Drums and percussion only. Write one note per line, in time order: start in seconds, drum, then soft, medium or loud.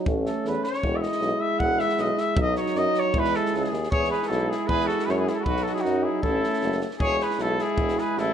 0.06 kick loud
0.26 snare soft
0.45 snare soft
0.64 snare soft
0.74 snare soft
0.83 kick medium
1.03 snare soft
1.12 snare soft
1.21 snare soft
1.60 kick medium
1.79 snare soft
1.89 snare soft
1.98 snare soft
2.18 snare soft
2.37 kick loud
2.56 snare soft
2.66 snare soft
2.75 snare soft
2.94 snare soft
3.14 kick medium
3.25 snare soft
3.34 snare soft
3.46 snare soft
3.54 snare soft
3.65 snare soft
3.73 snare soft
3.84 snare soft
3.92 kick loud
4.04 snare soft
4.13 snare soft
4.23 snare soft
4.32 snare soft
4.52 snare soft
4.69 kick medium
4.80 snare soft
4.89 snare soft
4.99 snare soft
5.09 snare soft
5.27 snare soft
5.46 kick medium
5.57 snare soft
5.67 snare soft
5.77 snare soft
5.85 snare soft
6.23 kick medium
6.44 snare soft
6.53 snare soft
6.61 snare soft
6.72 snare soft
6.81 snare soft
6.91 snare soft
7.00 kick medium
7.20 snare soft
7.31 snare soft
7.39 snare soft
7.59 snare soft
7.78 kick medium
7.88 snare soft
7.98 snare soft
8.18 snare soft